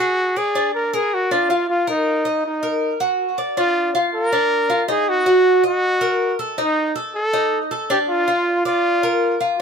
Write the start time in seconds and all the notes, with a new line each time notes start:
Already playing: F#4
0.00 G#4
0.36 G#4 D5
0.55 D4
0.75 A#4
0.93 G#4 A#4
1.14 F#4
1.31 D4 F4
1.50 F4
1.70 F4
1.87 D#4 A#4
2.25 D#5
2.46 D#4
2.63 A#4
3.00 F#4
3.38 D5
3.57 D4 F4
3.95 F4
4.14 A#4
4.33 D4
4.70 F4
4.88 D#4 G#4
5.09 F#4
5.26 F#4
5.64 F#4 D#5
6.01 A#4
6.39 A4
6.58 D#4
6.96 A4
7.15 A4
7.33 D#4
7.71 A4
7.90 D4 G4
8.09 F4
8.28 F4
8.65 F4 D5
9.03 A#4
9.41 F4